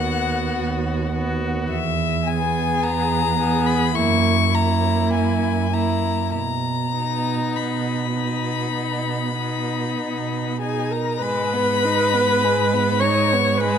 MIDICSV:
0, 0, Header, 1, 5, 480
1, 0, Start_track
1, 0, Key_signature, 5, "major"
1, 0, Tempo, 1121495
1, 732, Time_signature, 4, 2, 24, 8
1, 1693, Tempo, 1176471
1, 2173, Tempo, 1217039
1, 4573, Tempo, 1183432
1, 5614, End_track
2, 0, Start_track
2, 0, Title_t, "Violin"
2, 0, Program_c, 0, 40
2, 0, Note_on_c, 0, 78, 59
2, 493, Note_off_c, 0, 78, 0
2, 729, Note_on_c, 0, 76, 67
2, 972, Note_on_c, 0, 80, 66
2, 978, Note_off_c, 0, 76, 0
2, 1212, Note_on_c, 0, 82, 75
2, 1218, Note_off_c, 0, 80, 0
2, 1568, Note_on_c, 0, 83, 73
2, 1575, Note_off_c, 0, 82, 0
2, 1692, Note_on_c, 0, 85, 78
2, 1698, Note_off_c, 0, 83, 0
2, 1934, Note_on_c, 0, 82, 67
2, 1940, Note_off_c, 0, 85, 0
2, 2173, Note_off_c, 0, 82, 0
2, 2175, Note_on_c, 0, 80, 61
2, 2411, Note_on_c, 0, 82, 61
2, 2417, Note_off_c, 0, 80, 0
2, 2649, Note_off_c, 0, 82, 0
2, 2652, Note_on_c, 0, 82, 64
2, 3129, Note_on_c, 0, 83, 48
2, 3135, Note_off_c, 0, 82, 0
2, 4332, Note_off_c, 0, 83, 0
2, 4334, Note_on_c, 0, 80, 44
2, 4456, Note_on_c, 0, 82, 50
2, 4462, Note_off_c, 0, 80, 0
2, 4576, Note_on_c, 0, 83, 76
2, 4582, Note_off_c, 0, 82, 0
2, 5301, Note_on_c, 0, 85, 72
2, 5307, Note_off_c, 0, 83, 0
2, 5540, Note_on_c, 0, 83, 81
2, 5546, Note_off_c, 0, 85, 0
2, 5614, Note_off_c, 0, 83, 0
2, 5614, End_track
3, 0, Start_track
3, 0, Title_t, "Violin"
3, 0, Program_c, 1, 40
3, 12, Note_on_c, 1, 66, 41
3, 484, Note_off_c, 1, 66, 0
3, 492, Note_on_c, 1, 66, 46
3, 726, Note_off_c, 1, 66, 0
3, 968, Note_on_c, 1, 68, 49
3, 1439, Note_off_c, 1, 68, 0
3, 1446, Note_on_c, 1, 68, 49
3, 1687, Note_off_c, 1, 68, 0
3, 1691, Note_on_c, 1, 64, 46
3, 1926, Note_off_c, 1, 64, 0
3, 1930, Note_on_c, 1, 64, 49
3, 2399, Note_off_c, 1, 64, 0
3, 2409, Note_on_c, 1, 64, 39
3, 2643, Note_off_c, 1, 64, 0
3, 2894, Note_on_c, 1, 63, 36
3, 3360, Note_off_c, 1, 63, 0
3, 3369, Note_on_c, 1, 63, 33
3, 3841, Note_off_c, 1, 63, 0
3, 3850, Note_on_c, 1, 63, 31
3, 4325, Note_off_c, 1, 63, 0
3, 4340, Note_on_c, 1, 63, 33
3, 4573, Note_off_c, 1, 63, 0
3, 4581, Note_on_c, 1, 56, 51
3, 4703, Note_on_c, 1, 59, 46
3, 4709, Note_off_c, 1, 56, 0
3, 4828, Note_on_c, 1, 63, 46
3, 4834, Note_off_c, 1, 59, 0
3, 4946, Note_on_c, 1, 59, 44
3, 4952, Note_off_c, 1, 63, 0
3, 5071, Note_on_c, 1, 56, 48
3, 5077, Note_off_c, 1, 59, 0
3, 5190, Note_on_c, 1, 59, 46
3, 5196, Note_off_c, 1, 56, 0
3, 5304, Note_on_c, 1, 63, 47
3, 5310, Note_off_c, 1, 59, 0
3, 5431, Note_on_c, 1, 59, 46
3, 5437, Note_off_c, 1, 63, 0
3, 5543, Note_off_c, 1, 59, 0
3, 5547, Note_on_c, 1, 56, 52
3, 5614, Note_off_c, 1, 56, 0
3, 5614, End_track
4, 0, Start_track
4, 0, Title_t, "Viola"
4, 0, Program_c, 2, 41
4, 8, Note_on_c, 2, 59, 43
4, 482, Note_off_c, 2, 59, 0
4, 489, Note_on_c, 2, 59, 42
4, 725, Note_off_c, 2, 59, 0
4, 967, Note_on_c, 2, 59, 48
4, 1439, Note_off_c, 2, 59, 0
4, 1450, Note_on_c, 2, 59, 47
4, 1690, Note_off_c, 2, 59, 0
4, 1695, Note_on_c, 2, 58, 47
4, 1928, Note_off_c, 2, 58, 0
4, 1933, Note_on_c, 2, 58, 52
4, 2401, Note_off_c, 2, 58, 0
4, 2408, Note_on_c, 2, 58, 38
4, 2643, Note_off_c, 2, 58, 0
4, 2888, Note_on_c, 2, 59, 35
4, 3357, Note_off_c, 2, 59, 0
4, 3365, Note_on_c, 2, 59, 34
4, 3839, Note_off_c, 2, 59, 0
4, 3845, Note_on_c, 2, 59, 31
4, 4322, Note_off_c, 2, 59, 0
4, 4331, Note_on_c, 2, 68, 37
4, 4451, Note_on_c, 2, 70, 39
4, 4457, Note_off_c, 2, 68, 0
4, 4567, Note_off_c, 2, 70, 0
4, 4570, Note_on_c, 2, 71, 73
4, 5295, Note_on_c, 2, 73, 58
4, 5301, Note_off_c, 2, 71, 0
4, 5530, Note_on_c, 2, 71, 78
4, 5536, Note_off_c, 2, 73, 0
4, 5614, Note_off_c, 2, 71, 0
4, 5614, End_track
5, 0, Start_track
5, 0, Title_t, "Cello"
5, 0, Program_c, 3, 42
5, 0, Note_on_c, 3, 39, 53
5, 196, Note_off_c, 3, 39, 0
5, 252, Note_on_c, 3, 39, 55
5, 674, Note_off_c, 3, 39, 0
5, 727, Note_on_c, 3, 40, 59
5, 1151, Note_off_c, 3, 40, 0
5, 1208, Note_on_c, 3, 40, 57
5, 1635, Note_off_c, 3, 40, 0
5, 1693, Note_on_c, 3, 42, 64
5, 2116, Note_off_c, 3, 42, 0
5, 2172, Note_on_c, 3, 42, 52
5, 2591, Note_off_c, 3, 42, 0
5, 2647, Note_on_c, 3, 47, 45
5, 3071, Note_off_c, 3, 47, 0
5, 3126, Note_on_c, 3, 47, 42
5, 3550, Note_off_c, 3, 47, 0
5, 3609, Note_on_c, 3, 47, 40
5, 4035, Note_off_c, 3, 47, 0
5, 4086, Note_on_c, 3, 47, 37
5, 4516, Note_off_c, 3, 47, 0
5, 4570, Note_on_c, 3, 44, 54
5, 5614, Note_off_c, 3, 44, 0
5, 5614, End_track
0, 0, End_of_file